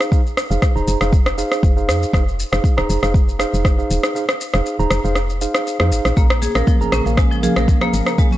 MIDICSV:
0, 0, Header, 1, 6, 480
1, 0, Start_track
1, 0, Tempo, 504202
1, 113, Time_signature, 4, 2, 24, 8
1, 7975, End_track
2, 0, Start_track
2, 0, Title_t, "Tine electric piano"
2, 0, Program_c, 0, 4
2, 110, Note_on_c, 0, 77, 89
2, 111, Note_on_c, 0, 63, 82
2, 111, Note_on_c, 0, 68, 72
2, 112, Note_on_c, 0, 72, 74
2, 195, Note_off_c, 0, 63, 0
2, 195, Note_off_c, 0, 68, 0
2, 195, Note_off_c, 0, 72, 0
2, 195, Note_off_c, 0, 77, 0
2, 480, Note_on_c, 0, 63, 80
2, 480, Note_on_c, 0, 68, 76
2, 480, Note_on_c, 0, 77, 92
2, 481, Note_on_c, 0, 72, 70
2, 690, Note_off_c, 0, 63, 0
2, 690, Note_off_c, 0, 77, 0
2, 691, Note_off_c, 0, 68, 0
2, 691, Note_off_c, 0, 72, 0
2, 718, Note_on_c, 0, 63, 86
2, 718, Note_on_c, 0, 68, 76
2, 718, Note_on_c, 0, 72, 81
2, 719, Note_on_c, 0, 82, 94
2, 929, Note_off_c, 0, 68, 0
2, 929, Note_off_c, 0, 72, 0
2, 930, Note_off_c, 0, 63, 0
2, 930, Note_off_c, 0, 82, 0
2, 960, Note_on_c, 0, 63, 85
2, 960, Note_on_c, 0, 68, 76
2, 960, Note_on_c, 0, 77, 95
2, 961, Note_on_c, 0, 72, 74
2, 1075, Note_off_c, 0, 77, 0
2, 1076, Note_off_c, 0, 63, 0
2, 1076, Note_off_c, 0, 68, 0
2, 1076, Note_off_c, 0, 72, 0
2, 1311, Note_on_c, 0, 68, 84
2, 1312, Note_on_c, 0, 63, 97
2, 1312, Note_on_c, 0, 77, 100
2, 1313, Note_on_c, 0, 72, 86
2, 1650, Note_off_c, 0, 68, 0
2, 1651, Note_off_c, 0, 63, 0
2, 1651, Note_off_c, 0, 72, 0
2, 1651, Note_off_c, 0, 77, 0
2, 1682, Note_on_c, 0, 63, 76
2, 1683, Note_on_c, 0, 68, 71
2, 1683, Note_on_c, 0, 72, 75
2, 1683, Note_on_c, 0, 77, 87
2, 2007, Note_off_c, 0, 63, 0
2, 2007, Note_off_c, 0, 68, 0
2, 2007, Note_off_c, 0, 72, 0
2, 2007, Note_off_c, 0, 77, 0
2, 2033, Note_on_c, 0, 63, 80
2, 2033, Note_on_c, 0, 72, 73
2, 2033, Note_on_c, 0, 77, 89
2, 2034, Note_on_c, 0, 68, 73
2, 2116, Note_off_c, 0, 63, 0
2, 2116, Note_off_c, 0, 68, 0
2, 2116, Note_off_c, 0, 72, 0
2, 2116, Note_off_c, 0, 77, 0
2, 2400, Note_on_c, 0, 72, 77
2, 2401, Note_on_c, 0, 68, 73
2, 2401, Note_on_c, 0, 77, 89
2, 2402, Note_on_c, 0, 63, 80
2, 2610, Note_off_c, 0, 72, 0
2, 2611, Note_off_c, 0, 63, 0
2, 2611, Note_off_c, 0, 68, 0
2, 2611, Note_off_c, 0, 77, 0
2, 2640, Note_on_c, 0, 63, 87
2, 2640, Note_on_c, 0, 68, 80
2, 2640, Note_on_c, 0, 82, 93
2, 2641, Note_on_c, 0, 72, 80
2, 2850, Note_off_c, 0, 63, 0
2, 2850, Note_off_c, 0, 68, 0
2, 2850, Note_off_c, 0, 82, 0
2, 2851, Note_off_c, 0, 72, 0
2, 2880, Note_on_c, 0, 68, 79
2, 2880, Note_on_c, 0, 72, 76
2, 2880, Note_on_c, 0, 77, 93
2, 2881, Note_on_c, 0, 63, 87
2, 2996, Note_off_c, 0, 63, 0
2, 2996, Note_off_c, 0, 68, 0
2, 2996, Note_off_c, 0, 72, 0
2, 2996, Note_off_c, 0, 77, 0
2, 3229, Note_on_c, 0, 63, 97
2, 3229, Note_on_c, 0, 68, 82
2, 3229, Note_on_c, 0, 72, 89
2, 3229, Note_on_c, 0, 77, 104
2, 3569, Note_off_c, 0, 63, 0
2, 3569, Note_off_c, 0, 72, 0
2, 3569, Note_off_c, 0, 77, 0
2, 3570, Note_off_c, 0, 68, 0
2, 3602, Note_on_c, 0, 63, 80
2, 3602, Note_on_c, 0, 68, 69
2, 3602, Note_on_c, 0, 72, 69
2, 3602, Note_on_c, 0, 77, 84
2, 3926, Note_off_c, 0, 63, 0
2, 3927, Note_off_c, 0, 68, 0
2, 3927, Note_off_c, 0, 72, 0
2, 3927, Note_off_c, 0, 77, 0
2, 3953, Note_on_c, 0, 63, 76
2, 3953, Note_on_c, 0, 68, 72
2, 3953, Note_on_c, 0, 72, 74
2, 3953, Note_on_c, 0, 77, 90
2, 4036, Note_off_c, 0, 63, 0
2, 4036, Note_off_c, 0, 68, 0
2, 4036, Note_off_c, 0, 72, 0
2, 4036, Note_off_c, 0, 77, 0
2, 4322, Note_on_c, 0, 72, 73
2, 4323, Note_on_c, 0, 63, 79
2, 4324, Note_on_c, 0, 68, 75
2, 4324, Note_on_c, 0, 77, 92
2, 4531, Note_off_c, 0, 72, 0
2, 4532, Note_off_c, 0, 63, 0
2, 4532, Note_off_c, 0, 68, 0
2, 4532, Note_off_c, 0, 77, 0
2, 4563, Note_on_c, 0, 72, 80
2, 4564, Note_on_c, 0, 68, 79
2, 4565, Note_on_c, 0, 63, 88
2, 4565, Note_on_c, 0, 82, 92
2, 4772, Note_off_c, 0, 68, 0
2, 4772, Note_off_c, 0, 72, 0
2, 4773, Note_off_c, 0, 63, 0
2, 4773, Note_off_c, 0, 82, 0
2, 4803, Note_on_c, 0, 68, 76
2, 4803, Note_on_c, 0, 72, 82
2, 4803, Note_on_c, 0, 77, 95
2, 4804, Note_on_c, 0, 63, 86
2, 4917, Note_off_c, 0, 63, 0
2, 4917, Note_off_c, 0, 68, 0
2, 4917, Note_off_c, 0, 72, 0
2, 4917, Note_off_c, 0, 77, 0
2, 5155, Note_on_c, 0, 77, 93
2, 5156, Note_on_c, 0, 63, 86
2, 5156, Note_on_c, 0, 68, 80
2, 5156, Note_on_c, 0, 72, 79
2, 5492, Note_off_c, 0, 77, 0
2, 5493, Note_off_c, 0, 63, 0
2, 5493, Note_off_c, 0, 68, 0
2, 5493, Note_off_c, 0, 72, 0
2, 5524, Note_on_c, 0, 63, 81
2, 5524, Note_on_c, 0, 68, 77
2, 5524, Note_on_c, 0, 72, 76
2, 5526, Note_on_c, 0, 77, 91
2, 5848, Note_off_c, 0, 63, 0
2, 5848, Note_off_c, 0, 68, 0
2, 5848, Note_off_c, 0, 72, 0
2, 5849, Note_off_c, 0, 77, 0
2, 5875, Note_on_c, 0, 68, 68
2, 5876, Note_on_c, 0, 61, 77
2, 5876, Note_on_c, 0, 70, 71
2, 5876, Note_on_c, 0, 77, 85
2, 5957, Note_off_c, 0, 61, 0
2, 5957, Note_off_c, 0, 68, 0
2, 5957, Note_off_c, 0, 70, 0
2, 5957, Note_off_c, 0, 77, 0
2, 6244, Note_on_c, 0, 61, 82
2, 6244, Note_on_c, 0, 70, 78
2, 6245, Note_on_c, 0, 68, 76
2, 6245, Note_on_c, 0, 77, 87
2, 6452, Note_off_c, 0, 61, 0
2, 6452, Note_off_c, 0, 70, 0
2, 6453, Note_off_c, 0, 68, 0
2, 6453, Note_off_c, 0, 77, 0
2, 6482, Note_on_c, 0, 82, 96
2, 6483, Note_on_c, 0, 61, 86
2, 6483, Note_on_c, 0, 68, 80
2, 6483, Note_on_c, 0, 70, 78
2, 6692, Note_off_c, 0, 61, 0
2, 6692, Note_off_c, 0, 68, 0
2, 6692, Note_off_c, 0, 70, 0
2, 6692, Note_off_c, 0, 82, 0
2, 6721, Note_on_c, 0, 70, 80
2, 6722, Note_on_c, 0, 61, 83
2, 6722, Note_on_c, 0, 77, 96
2, 6723, Note_on_c, 0, 68, 76
2, 6836, Note_off_c, 0, 61, 0
2, 6836, Note_off_c, 0, 70, 0
2, 6836, Note_off_c, 0, 77, 0
2, 6837, Note_off_c, 0, 68, 0
2, 7073, Note_on_c, 0, 61, 95
2, 7073, Note_on_c, 0, 68, 84
2, 7073, Note_on_c, 0, 70, 87
2, 7073, Note_on_c, 0, 77, 99
2, 7411, Note_off_c, 0, 61, 0
2, 7411, Note_off_c, 0, 68, 0
2, 7411, Note_off_c, 0, 70, 0
2, 7411, Note_off_c, 0, 77, 0
2, 7440, Note_on_c, 0, 68, 74
2, 7440, Note_on_c, 0, 70, 72
2, 7440, Note_on_c, 0, 77, 89
2, 7441, Note_on_c, 0, 61, 76
2, 7766, Note_off_c, 0, 61, 0
2, 7766, Note_off_c, 0, 68, 0
2, 7766, Note_off_c, 0, 70, 0
2, 7766, Note_off_c, 0, 77, 0
2, 7793, Note_on_c, 0, 61, 81
2, 7793, Note_on_c, 0, 68, 70
2, 7793, Note_on_c, 0, 70, 72
2, 7793, Note_on_c, 0, 77, 83
2, 7876, Note_off_c, 0, 61, 0
2, 7876, Note_off_c, 0, 68, 0
2, 7876, Note_off_c, 0, 70, 0
2, 7876, Note_off_c, 0, 77, 0
2, 7975, End_track
3, 0, Start_track
3, 0, Title_t, "Analog synth pad"
3, 0, Program_c, 1, 89
3, 5874, Note_on_c, 1, 49, 77
3, 5875, Note_on_c, 1, 58, 72
3, 5875, Note_on_c, 1, 68, 88
3, 7975, Note_off_c, 1, 49, 0
3, 7975, Note_off_c, 1, 58, 0
3, 7975, Note_off_c, 1, 68, 0
3, 7975, End_track
4, 0, Start_track
4, 0, Title_t, "Marimba"
4, 0, Program_c, 2, 12
4, 5873, Note_on_c, 2, 58, 77
4, 5996, Note_off_c, 2, 58, 0
4, 6111, Note_on_c, 2, 68, 76
4, 6235, Note_off_c, 2, 68, 0
4, 6242, Note_on_c, 2, 70, 69
4, 6342, Note_off_c, 2, 70, 0
4, 6355, Note_on_c, 2, 53, 72
4, 6470, Note_off_c, 2, 53, 0
4, 6594, Note_on_c, 2, 61, 68
4, 6664, Note_off_c, 2, 61, 0
4, 6834, Note_on_c, 2, 56, 73
4, 6956, Note_off_c, 2, 56, 0
4, 6963, Note_on_c, 2, 53, 71
4, 7063, Note_off_c, 2, 53, 0
4, 7075, Note_on_c, 2, 68, 75
4, 7197, Note_off_c, 2, 68, 0
4, 7204, Note_on_c, 2, 70, 71
4, 7303, Note_off_c, 2, 70, 0
4, 7442, Note_on_c, 2, 58, 97
4, 7542, Note_off_c, 2, 58, 0
4, 7681, Note_on_c, 2, 58, 65
4, 7782, Note_off_c, 2, 58, 0
4, 7795, Note_on_c, 2, 56, 79
4, 7917, Note_off_c, 2, 56, 0
4, 7925, Note_on_c, 2, 61, 70
4, 7975, Note_off_c, 2, 61, 0
4, 7975, End_track
5, 0, Start_track
5, 0, Title_t, "FM bass"
5, 0, Program_c, 3, 39
5, 481, Note_on_c, 3, 29, 84
5, 553, Note_off_c, 3, 29, 0
5, 722, Note_on_c, 3, 27, 77
5, 793, Note_off_c, 3, 27, 0
5, 833, Note_on_c, 3, 29, 101
5, 916, Note_off_c, 3, 29, 0
5, 964, Note_on_c, 3, 29, 82
5, 1368, Note_off_c, 3, 29, 0
5, 1553, Note_on_c, 3, 29, 83
5, 1795, Note_on_c, 3, 41, 93
5, 1809, Note_off_c, 3, 29, 0
5, 1954, Note_off_c, 3, 41, 0
5, 2033, Note_on_c, 3, 29, 92
5, 2328, Note_off_c, 3, 29, 0
5, 2405, Note_on_c, 3, 29, 89
5, 2475, Note_off_c, 3, 29, 0
5, 2644, Note_on_c, 3, 27, 78
5, 2714, Note_off_c, 3, 27, 0
5, 2755, Note_on_c, 3, 29, 102
5, 2837, Note_off_c, 3, 29, 0
5, 2884, Note_on_c, 3, 29, 80
5, 3289, Note_off_c, 3, 29, 0
5, 3366, Note_on_c, 3, 29, 80
5, 3651, Note_off_c, 3, 29, 0
5, 3716, Note_on_c, 3, 27, 96
5, 3797, Note_off_c, 3, 27, 0
5, 4325, Note_on_c, 3, 29, 88
5, 4395, Note_off_c, 3, 29, 0
5, 4562, Note_on_c, 3, 27, 79
5, 4633, Note_off_c, 3, 27, 0
5, 4672, Note_on_c, 3, 29, 96
5, 4755, Note_off_c, 3, 29, 0
5, 4802, Note_on_c, 3, 29, 82
5, 5207, Note_off_c, 3, 29, 0
5, 5525, Note_on_c, 3, 41, 103
5, 5633, Note_on_c, 3, 32, 82
5, 5648, Note_off_c, 3, 41, 0
5, 5716, Note_off_c, 3, 32, 0
5, 5762, Note_on_c, 3, 34, 84
5, 5833, Note_off_c, 3, 34, 0
5, 5874, Note_on_c, 3, 34, 97
5, 6168, Note_off_c, 3, 34, 0
5, 6241, Note_on_c, 3, 34, 85
5, 6313, Note_off_c, 3, 34, 0
5, 6486, Note_on_c, 3, 32, 77
5, 6555, Note_off_c, 3, 32, 0
5, 6592, Note_on_c, 3, 34, 98
5, 6675, Note_off_c, 3, 34, 0
5, 6722, Note_on_c, 3, 34, 74
5, 7128, Note_off_c, 3, 34, 0
5, 7204, Note_on_c, 3, 34, 80
5, 7490, Note_off_c, 3, 34, 0
5, 7553, Note_on_c, 3, 32, 96
5, 7636, Note_off_c, 3, 32, 0
5, 7975, End_track
6, 0, Start_track
6, 0, Title_t, "Drums"
6, 5, Note_on_c, 9, 37, 71
6, 12, Note_on_c, 9, 82, 38
6, 100, Note_off_c, 9, 37, 0
6, 107, Note_off_c, 9, 82, 0
6, 113, Note_on_c, 9, 36, 104
6, 121, Note_on_c, 9, 82, 48
6, 208, Note_off_c, 9, 36, 0
6, 216, Note_off_c, 9, 82, 0
6, 250, Note_on_c, 9, 82, 23
6, 346, Note_off_c, 9, 82, 0
6, 356, Note_on_c, 9, 37, 83
6, 362, Note_on_c, 9, 82, 83
6, 451, Note_off_c, 9, 37, 0
6, 457, Note_off_c, 9, 82, 0
6, 490, Note_on_c, 9, 82, 35
6, 585, Note_off_c, 9, 82, 0
6, 592, Note_on_c, 9, 37, 68
6, 593, Note_on_c, 9, 36, 90
6, 599, Note_on_c, 9, 82, 46
6, 688, Note_off_c, 9, 36, 0
6, 688, Note_off_c, 9, 37, 0
6, 694, Note_off_c, 9, 82, 0
6, 728, Note_on_c, 9, 82, 22
6, 823, Note_off_c, 9, 82, 0
6, 834, Note_on_c, 9, 82, 81
6, 930, Note_off_c, 9, 82, 0
6, 960, Note_on_c, 9, 37, 79
6, 967, Note_on_c, 9, 82, 35
6, 1055, Note_off_c, 9, 37, 0
6, 1062, Note_off_c, 9, 82, 0
6, 1072, Note_on_c, 9, 36, 106
6, 1077, Note_on_c, 9, 82, 45
6, 1168, Note_off_c, 9, 36, 0
6, 1172, Note_off_c, 9, 82, 0
6, 1202, Note_on_c, 9, 37, 86
6, 1208, Note_on_c, 9, 82, 25
6, 1297, Note_off_c, 9, 37, 0
6, 1303, Note_off_c, 9, 82, 0
6, 1317, Note_on_c, 9, 82, 79
6, 1412, Note_off_c, 9, 82, 0
6, 1443, Note_on_c, 9, 37, 70
6, 1450, Note_on_c, 9, 82, 36
6, 1538, Note_off_c, 9, 37, 0
6, 1545, Note_off_c, 9, 82, 0
6, 1553, Note_on_c, 9, 36, 100
6, 1561, Note_on_c, 9, 82, 45
6, 1648, Note_off_c, 9, 36, 0
6, 1657, Note_off_c, 9, 82, 0
6, 1689, Note_on_c, 9, 82, 23
6, 1785, Note_off_c, 9, 82, 0
6, 1797, Note_on_c, 9, 37, 79
6, 1803, Note_on_c, 9, 82, 84
6, 1892, Note_off_c, 9, 37, 0
6, 1898, Note_off_c, 9, 82, 0
6, 1932, Note_on_c, 9, 82, 36
6, 2028, Note_off_c, 9, 82, 0
6, 2033, Note_on_c, 9, 36, 101
6, 2038, Note_on_c, 9, 37, 73
6, 2045, Note_on_c, 9, 82, 46
6, 2128, Note_off_c, 9, 36, 0
6, 2134, Note_off_c, 9, 37, 0
6, 2140, Note_off_c, 9, 82, 0
6, 2171, Note_on_c, 9, 82, 23
6, 2266, Note_off_c, 9, 82, 0
6, 2282, Note_on_c, 9, 82, 83
6, 2377, Note_off_c, 9, 82, 0
6, 2405, Note_on_c, 9, 37, 84
6, 2412, Note_on_c, 9, 82, 36
6, 2500, Note_off_c, 9, 37, 0
6, 2507, Note_off_c, 9, 82, 0
6, 2512, Note_on_c, 9, 36, 92
6, 2521, Note_on_c, 9, 82, 46
6, 2607, Note_off_c, 9, 36, 0
6, 2617, Note_off_c, 9, 82, 0
6, 2645, Note_on_c, 9, 37, 77
6, 2651, Note_on_c, 9, 82, 23
6, 2740, Note_off_c, 9, 37, 0
6, 2746, Note_off_c, 9, 82, 0
6, 2759, Note_on_c, 9, 82, 84
6, 2854, Note_off_c, 9, 82, 0
6, 2883, Note_on_c, 9, 37, 69
6, 2889, Note_on_c, 9, 82, 34
6, 2978, Note_off_c, 9, 37, 0
6, 2985, Note_off_c, 9, 82, 0
6, 2992, Note_on_c, 9, 36, 108
6, 3001, Note_on_c, 9, 82, 47
6, 3088, Note_off_c, 9, 36, 0
6, 3096, Note_off_c, 9, 82, 0
6, 3129, Note_on_c, 9, 82, 25
6, 3224, Note_off_c, 9, 82, 0
6, 3233, Note_on_c, 9, 37, 82
6, 3239, Note_on_c, 9, 82, 79
6, 3328, Note_off_c, 9, 37, 0
6, 3334, Note_off_c, 9, 82, 0
6, 3371, Note_on_c, 9, 82, 34
6, 3466, Note_off_c, 9, 82, 0
6, 3473, Note_on_c, 9, 36, 93
6, 3473, Note_on_c, 9, 37, 71
6, 3480, Note_on_c, 9, 82, 44
6, 3568, Note_off_c, 9, 36, 0
6, 3568, Note_off_c, 9, 37, 0
6, 3575, Note_off_c, 9, 82, 0
6, 3610, Note_on_c, 9, 82, 22
6, 3705, Note_off_c, 9, 82, 0
6, 3719, Note_on_c, 9, 82, 82
6, 3814, Note_off_c, 9, 82, 0
6, 3841, Note_on_c, 9, 37, 87
6, 3847, Note_on_c, 9, 82, 35
6, 3936, Note_off_c, 9, 37, 0
6, 3943, Note_off_c, 9, 82, 0
6, 3961, Note_on_c, 9, 82, 48
6, 4056, Note_off_c, 9, 82, 0
6, 4081, Note_on_c, 9, 37, 89
6, 4088, Note_on_c, 9, 82, 25
6, 4176, Note_off_c, 9, 37, 0
6, 4183, Note_off_c, 9, 82, 0
6, 4197, Note_on_c, 9, 82, 83
6, 4292, Note_off_c, 9, 82, 0
6, 4318, Note_on_c, 9, 37, 77
6, 4324, Note_on_c, 9, 82, 36
6, 4413, Note_off_c, 9, 37, 0
6, 4420, Note_off_c, 9, 82, 0
6, 4438, Note_on_c, 9, 82, 46
6, 4533, Note_off_c, 9, 82, 0
6, 4566, Note_on_c, 9, 82, 23
6, 4661, Note_off_c, 9, 82, 0
6, 4670, Note_on_c, 9, 37, 88
6, 4676, Note_on_c, 9, 82, 84
6, 4765, Note_off_c, 9, 37, 0
6, 4771, Note_off_c, 9, 82, 0
6, 4807, Note_on_c, 9, 82, 34
6, 4902, Note_off_c, 9, 82, 0
6, 4907, Note_on_c, 9, 37, 77
6, 4914, Note_on_c, 9, 82, 45
6, 5002, Note_off_c, 9, 37, 0
6, 5009, Note_off_c, 9, 82, 0
6, 5044, Note_on_c, 9, 82, 26
6, 5140, Note_off_c, 9, 82, 0
6, 5154, Note_on_c, 9, 82, 79
6, 5249, Note_off_c, 9, 82, 0
6, 5279, Note_on_c, 9, 37, 88
6, 5286, Note_on_c, 9, 82, 35
6, 5374, Note_off_c, 9, 37, 0
6, 5381, Note_off_c, 9, 82, 0
6, 5399, Note_on_c, 9, 82, 48
6, 5494, Note_off_c, 9, 82, 0
6, 5519, Note_on_c, 9, 37, 86
6, 5526, Note_on_c, 9, 82, 23
6, 5615, Note_off_c, 9, 37, 0
6, 5621, Note_off_c, 9, 82, 0
6, 5635, Note_on_c, 9, 82, 81
6, 5730, Note_off_c, 9, 82, 0
6, 5761, Note_on_c, 9, 37, 75
6, 5767, Note_on_c, 9, 82, 37
6, 5856, Note_off_c, 9, 37, 0
6, 5862, Note_off_c, 9, 82, 0
6, 5873, Note_on_c, 9, 36, 109
6, 5876, Note_on_c, 9, 82, 51
6, 5968, Note_off_c, 9, 36, 0
6, 5971, Note_off_c, 9, 82, 0
6, 6001, Note_on_c, 9, 37, 94
6, 6007, Note_on_c, 9, 82, 25
6, 6096, Note_off_c, 9, 37, 0
6, 6102, Note_off_c, 9, 82, 0
6, 6113, Note_on_c, 9, 63, 67
6, 6114, Note_on_c, 9, 82, 88
6, 6208, Note_off_c, 9, 63, 0
6, 6209, Note_off_c, 9, 82, 0
6, 6238, Note_on_c, 9, 37, 76
6, 6245, Note_on_c, 9, 82, 36
6, 6334, Note_off_c, 9, 37, 0
6, 6340, Note_off_c, 9, 82, 0
6, 6348, Note_on_c, 9, 63, 102
6, 6352, Note_on_c, 9, 36, 98
6, 6356, Note_on_c, 9, 82, 48
6, 6443, Note_off_c, 9, 63, 0
6, 6448, Note_off_c, 9, 36, 0
6, 6451, Note_off_c, 9, 82, 0
6, 6487, Note_on_c, 9, 82, 24
6, 6582, Note_off_c, 9, 82, 0
6, 6591, Note_on_c, 9, 37, 91
6, 6597, Note_on_c, 9, 82, 88
6, 6686, Note_off_c, 9, 37, 0
6, 6692, Note_off_c, 9, 82, 0
6, 6718, Note_on_c, 9, 63, 95
6, 6726, Note_on_c, 9, 82, 37
6, 6813, Note_off_c, 9, 63, 0
6, 6821, Note_off_c, 9, 82, 0
6, 6830, Note_on_c, 9, 37, 77
6, 6832, Note_on_c, 9, 36, 110
6, 6836, Note_on_c, 9, 82, 51
6, 6925, Note_off_c, 9, 37, 0
6, 6927, Note_off_c, 9, 36, 0
6, 6932, Note_off_c, 9, 82, 0
6, 6966, Note_on_c, 9, 82, 27
6, 7062, Note_off_c, 9, 82, 0
6, 7073, Note_on_c, 9, 63, 63
6, 7076, Note_on_c, 9, 64, 97
6, 7077, Note_on_c, 9, 82, 85
6, 7168, Note_off_c, 9, 63, 0
6, 7171, Note_off_c, 9, 64, 0
6, 7172, Note_off_c, 9, 82, 0
6, 7201, Note_on_c, 9, 37, 91
6, 7207, Note_on_c, 9, 82, 36
6, 7296, Note_off_c, 9, 37, 0
6, 7302, Note_off_c, 9, 82, 0
6, 7312, Note_on_c, 9, 36, 101
6, 7316, Note_on_c, 9, 82, 51
6, 7407, Note_off_c, 9, 36, 0
6, 7411, Note_off_c, 9, 82, 0
6, 7437, Note_on_c, 9, 64, 95
6, 7439, Note_on_c, 9, 37, 85
6, 7442, Note_on_c, 9, 63, 82
6, 7446, Note_on_c, 9, 82, 23
6, 7532, Note_off_c, 9, 64, 0
6, 7535, Note_off_c, 9, 37, 0
6, 7537, Note_off_c, 9, 63, 0
6, 7541, Note_off_c, 9, 82, 0
6, 7555, Note_on_c, 9, 82, 83
6, 7650, Note_off_c, 9, 82, 0
6, 7678, Note_on_c, 9, 37, 79
6, 7684, Note_on_c, 9, 82, 39
6, 7773, Note_off_c, 9, 37, 0
6, 7779, Note_off_c, 9, 82, 0
6, 7791, Note_on_c, 9, 36, 116
6, 7793, Note_on_c, 9, 82, 54
6, 7886, Note_off_c, 9, 36, 0
6, 7889, Note_off_c, 9, 82, 0
6, 7911, Note_on_c, 9, 64, 98
6, 7926, Note_on_c, 9, 82, 26
6, 7975, Note_off_c, 9, 64, 0
6, 7975, Note_off_c, 9, 82, 0
6, 7975, End_track
0, 0, End_of_file